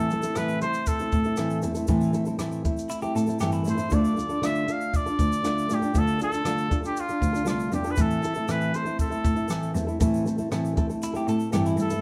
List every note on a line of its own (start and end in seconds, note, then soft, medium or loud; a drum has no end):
0.00 0.11 A2 medium
0.00 1.09 A2 medium
0.00 0.11 E3 medium
0.00 0.10 C4 medium
0.00 0.12 E4 medium
0.00 0.12 A4 medium
0.00 0.39 A4 medium
0.10 0.24 A3 medium
0.10 0.23 C4 medium
0.10 0.23 E4 medium
0.10 0.22 A4 medium
0.10 shaker soft
0.22 0.35 A3 soft
0.22 0.35 C4 soft
0.22 0.36 E4 soft
0.22 0.36 A4 soft
0.22 shaker soft
0.35 0.61 A2 medium
0.35 0.62 E3 medium
0.35 0.60 A3 medium
0.35 0.61 C4 medium
0.35 0.62 E4 medium
0.35 0.62 A4 medium
0.35 0.61 B4 medium
0.35 cross-stick medium
0.35 shaker medium
0.48 shaker soft
0.61 1.00 A3 medium
0.61 1.00 C4 soft
0.61 0.99 E4 medium
0.61 0.98 A4 medium
0.61 0.89 C5 medium
0.61 shaker soft
0.73 shaker soft
0.86 1.64 A4 medium
0.86 kick medium
0.86 shaker medium
0.99 1.26 A3 soft
0.99 1.25 C4 soft
0.99 1.25 E4 soft
0.99 1.24 A4 soft
0.99 shaker soft
1.12 1.60 A2 medium
1.12 kick medium
1.12 shaker soft
1.24 1.37 A3 soft
1.24 1.37 C4 soft
1.24 1.38 E4 soft
1.24 1.38 A4 soft
1.24 shaker soft
1.36 1.63 A2 medium
1.36 1.64 E3 medium
1.36 1.61 A3 medium
1.36 1.62 C4 medium
1.36 1.62 E4 medium
1.36 1.63 A4 medium
1.36 cross-stick medium
1.36 shaker medium
1.50 shaker soft
1.62 1.87 E2 medium
1.62 1.76 A3 medium
1.62 1.75 C4 medium
1.62 1.75 E4 medium
1.62 1.73 A4 medium
1.62 shaker medium
1.62 shaker soft
1.74 1.87 A3 soft
1.74 1.88 C4 soft
1.74 1.88 E4 medium
1.74 1.88 A4 medium
1.74 shaker soft
1.87 2.14 A2 medium
1.87 3.12 A2 medium
1.87 2.14 E3 loud
1.87 2.12 A3 medium
1.87 2.12 C4 medium
1.87 2.13 E4 medium
1.87 2.14 A4 medium
1.87 kick loud
1.87 shaker medium
2.01 shaker soft
2.13 2.26 A3 medium
2.13 2.27 C4 medium
2.13 2.26 E4 medium
2.13 2.25 A4 medium
2.13 shaker soft
2.25 2.38 A3 soft
2.25 2.38 C4 medium
2.25 2.38 E4 medium
2.25 2.39 A4 medium
2.25 shaker soft
2.38 2.64 A2 medium
2.38 2.65 E3 medium
2.38 2.63 A3 medium
2.38 2.64 C4 medium
2.38 2.64 E4 medium
2.38 2.65 A4 medium
2.38 cross-stick loud
2.38 shaker medium
2.52 shaker soft
2.64 3.03 A3 soft
2.64 3.03 C4 medium
2.64 3.02 E4 medium
2.64 3.01 A4 medium
2.64 kick medium
2.64 shaker soft
2.77 shaker soft
2.79 shaker soft
2.89 3.02 E4 medium
2.89 shaker medium
2.91 shaker medium
3.02 3.28 A3 soft
3.02 3.28 C4 soft
3.02 3.27 E4 soft
3.02 3.15 G4 medium
3.02 3.26 A4 medium
3.02 shaker soft
3.15 3.39 A2 medium
3.15 3.40 A4 medium
3.15 shaker soft
3.15 shaker medium
3.27 3.40 A3 soft
3.27 3.40 C4 soft
3.27 3.41 E4 medium
3.27 3.41 A4 medium
3.27 shaker soft
3.30 shaker soft
3.39 3.64 G2 medium
3.39 3.52 G4 medium
3.39 shaker medium
3.41 3.66 A2 medium
3.41 3.66 E3 medium
3.41 3.64 A3 medium
3.41 3.65 C4 medium
3.41 3.66 E4 medium
3.41 3.66 A4 medium
3.41 cross-stick medium
3.41 shaker medium
3.52 3.89 E4 medium
3.52 shaker soft
3.65 3.89 A2 medium
3.65 3.79 A3 medium
3.65 3.78 C4 medium
3.65 3.77 E4 medium
3.65 shaker medium
3.67 3.76 A4 medium
3.67 3.96 C5 medium
3.67 shaker soft
3.77 3.91 E4 soft
3.77 3.91 A4 medium
3.77 shaker soft
3.79 3.90 A3 soft
3.79 3.91 C4 soft
3.79 shaker soft
3.90 5.15 D2 medium
3.90 4.17 D3 medium
3.90 4.15 A3 medium
3.90 4.15 D4 medium
3.90 4.16 F4 medium
3.90 kick loud
3.90 shaker medium
3.92 4.17 A4 medium
3.92 4.47 D5 medium
3.92 shaker medium
4.05 shaker soft
4.16 4.29 A3 medium
4.16 4.30 D4 medium
4.16 4.29 F4 medium
4.16 4.28 A4 medium
4.16 shaker soft
4.19 shaker soft
4.29 4.41 D4 soft
4.29 4.42 F4 soft
4.29 4.42 A4 medium
4.29 shaker medium
4.42 4.67 D3 medium
4.42 4.65 A3 medium
4.42 4.66 D4 medium
4.42 4.67 F4 medium
4.42 4.68 A4 medium
4.42 4.74 E5 medium
4.42 cross-stick loud
4.42 shaker medium
4.55 shaker soft
4.67 5.05 A3 soft
4.67 5.06 D4 medium
4.67 5.06 F4 medium
4.67 5.05 A4 medium
4.67 shaker soft
4.72 4.98 F5 medium
4.81 shaker soft
4.94 5.76 D5 loud
4.94 kick medium
4.94 shaker medium
5.06 5.43 D4 soft
5.06 5.43 F4 soft
5.06 5.43 A4 soft
5.06 shaker soft
5.19 5.65 D2 medium
5.19 kick medium
5.19 shaker soft
5.19 shaker medium
5.32 shaker medium
5.32 shaker soft
5.43 5.69 D3 medium
5.43 5.68 A3 medium
5.43 5.69 D4 medium
5.43 5.70 F4 medium
5.43 5.70 A4 medium
5.43 cross-stick medium
5.43 shaker medium
5.58 shaker soft
5.69 5.93 A2 medium
5.69 5.82 A3 medium
5.69 5.82 D4 medium
5.69 5.82 F4 medium
5.69 5.80 A4 medium
5.69 cross-stick soft
5.69 shaker medium
5.69 shaker soft
5.74 6.00 G4 medium
5.82 5.93 D4 soft
5.82 5.94 F4 soft
5.82 5.94 A4 soft
5.82 shaker soft
5.94 7.18 D2 medium
5.94 6.20 D3 medium
5.94 6.19 A3 medium
5.94 6.20 D4 medium
5.94 6.20 F4 medium
5.94 6.20 A4 medium
5.94 kick loud
5.94 shaker medium
5.99 6.22 A4 medium
6.07 shaker soft
6.19 6.33 A3 medium
6.19 6.33 D4 medium
6.19 shaker soft
6.21 6.33 F4 medium
6.21 6.31 A4 medium
6.21 6.81 A4 medium
6.21 shaker soft
6.32 6.45 F4 soft
6.32 shaker soft
6.34 6.44 D4 soft
6.34 shaker soft
6.45 6.70 D3 medium
6.45 6.68 A3 medium
6.45 6.69 D4 medium
6.45 6.71 F4 medium
6.45 6.71 A4 medium
6.45 cross-stick loud
6.45 shaker medium
6.58 shaker soft
6.70 6.83 A3 soft
6.70 6.83 D4 medium
6.70 6.83 F4 medium
6.70 6.81 A4 medium
6.70 kick medium
6.70 shaker soft
6.82 7.09 F4 soft
6.82 7.08 A4 soft
6.82 shaker soft
6.85 7.10 D4 soft
6.85 7.02 G4 medium
6.85 shaker soft
6.96 7.49 F4 medium
6.96 shaker medium
7.09 7.34 D4 soft
7.09 7.33 F4 soft
7.09 7.32 A4 soft
7.09 shaker soft
7.21 7.45 D2 medium
7.21 kick medium
7.21 shaker soft
7.21 shaker medium
7.33 7.44 D4 soft
7.33 7.45 F4 soft
7.33 7.45 A4 soft
7.33 shaker medium
7.33 shaker soft
7.45 7.70 C2 medium
7.45 7.71 D3 medium
7.45 7.70 A3 medium
7.45 7.71 D4 medium
7.45 7.71 F4 medium
7.45 7.72 A4 medium
7.45 shaker medium
7.47 7.72 F4 medium
7.47 cross-stick medium
7.47 shaker medium
7.60 shaker soft
7.71 7.96 E2 medium
7.71 7.84 A3 medium
7.71 7.85 D4 medium
7.71 7.84 F4 medium
7.71 7.93 G4 medium
7.71 7.83 A4 medium
7.71 shaker soft
7.84 7.98 D4 soft
7.84 7.98 F4 soft
7.84 7.97 A4 soft
7.84 shaker soft
7.91 8.03 B4 medium
7.96 8.23 A2 medium
7.96 9.20 A2 medium
7.96 8.23 E3 medium
7.96 8.21 A3 medium
7.96 shaker medium
7.98 8.22 C4 medium
7.98 8.23 E4 medium
7.98 8.23 A4 medium
7.98 8.53 A4 medium
7.98 kick loud
7.98 shaker medium
8.11 shaker soft
8.22 8.35 A3 soft
8.22 8.36 C4 medium
8.22 shaker soft
8.24 8.35 E4 medium
8.24 8.35 A4 medium
8.24 shaker medium
8.34 8.48 A3 soft
8.34 8.48 C4 soft
8.34 8.48 E4 soft
8.34 8.48 A4 soft
8.34 shaker medium
8.48 8.74 A2 medium
8.48 8.74 E3 medium
8.48 8.72 A3 medium
8.48 8.73 C4 medium
8.48 8.74 E4 medium
8.48 8.74 A4 medium
8.48 8.77 B4 medium
8.48 cross-stick loud
8.48 shaker medium
8.61 shaker soft
8.73 8.86 A3 medium
8.73 8.85 C4 soft
8.73 8.85 E4 medium
8.73 8.83 A4 medium
8.73 9.00 C5 medium
8.73 shaker soft
8.85 9.11 A3 soft
8.85 9.10 C4 soft
8.85 9.09 E4 soft
8.85 9.09 A4 soft
8.85 shaker soft
8.99 9.72 A4 medium
8.99 kick medium
8.99 shaker medium
9.10 9.37 A3 soft
9.10 9.35 C4 soft
9.10 9.35 E4 soft
9.10 9.34 A4 soft
9.10 shaker soft
9.24 9.74 A2 medium
9.24 kick medium
9.24 shaker soft
9.35 9.48 A3 soft
9.35 9.49 C4 soft
9.35 9.49 E4 soft
9.35 9.49 A4 soft
9.35 shaker soft
9.48 9.75 A2 medium
9.48 9.75 E3 medium
9.48 9.73 A3 medium
9.48 shaker medium
9.50 9.73 C4 medium
9.50 9.74 E4 medium
9.50 9.75 A4 medium
9.50 cross-stick loud
9.50 shaker medium
9.63 shaker soft
9.74 9.98 E2 medium
9.74 9.87 A3 medium
9.74 9.87 C4 medium
9.74 9.87 E4 medium
9.74 9.86 A4 medium
9.74 cross-stick soft
9.74 shaker medium
9.77 shaker soft
9.87 10.00 A3 soft
9.87 9.99 C4 soft
9.87 10.00 E4 medium
9.87 10.00 A4 medium
9.87 shaker soft
10.00 10.25 A2 medium
10.00 11.23 A2 medium
10.00 10.26 E3 medium
10.00 10.24 A3 medium
10.00 10.25 C4 medium
10.00 10.26 E4 medium
10.00 10.26 A4 loud
10.00 kick loud
10.00 shaker medium
10.14 shaker medium
10.25 10.38 A3 medium
10.25 10.38 C4 medium
10.25 10.38 E4 medium
10.25 shaker soft
10.28 10.37 A4 medium
10.28 shaker soft
10.38 10.50 A3 soft
10.38 10.51 C4 soft
10.38 10.51 E4 soft
10.38 10.51 A4 medium
10.38 shaker soft
10.51 10.76 A2 medium
10.51 10.77 E3 medium
10.51 10.74 A3 medium
10.51 10.75 C4 medium
10.51 10.76 E4 medium
10.51 10.77 A4 medium
10.51 cross-stick loud
10.51 shaker medium
10.65 shaker soft
10.75 10.89 A3 medium
10.75 10.89 C4 medium
10.75 10.89 E4 medium
10.75 10.88 A4 medium
10.75 kick medium
10.75 shaker soft
10.90 11.15 A3 soft
10.90 11.14 C4 soft
10.90 11.13 E4 soft
10.90 11.12 A4 soft
10.90 shaker soft
11.02 11.15 E4 medium
11.02 shaker medium
11.14 11.52 A3 soft
11.14 11.52 C4 soft
11.14 11.52 E4 soft
11.14 11.28 G4 medium
11.14 11.52 A4 medium
11.14 shaker soft
11.27 11.51 A2 medium
11.27 11.52 A4 medium
11.27 shaker soft
11.40 shaker soft
11.53 11.76 G2 medium
11.53 11.78 A2 medium
11.53 11.78 E3 medium
11.53 11.77 A3 medium
11.53 11.78 C4 medium
11.53 11.79 E4 medium
11.53 11.65 G4 medium
11.53 11.79 A4 medium
11.53 cross-stick medium
11.53 shaker medium
11.66 12.01 E4 medium
11.66 shaker medium
11.77 12.01 G2 medium
11.77 11.91 A3 medium
11.77 11.91 C4 soft
11.77 shaker medium
11.80 11.91 E4 medium
11.80 11.89 A4 medium
11.80 12.01 A4 medium
11.80 shaker soft
11.90 12.01 A3 soft
11.90 12.01 C4 soft
11.90 12.01 E4 soft
11.90 12.01 A4 medium
11.90 shaker soft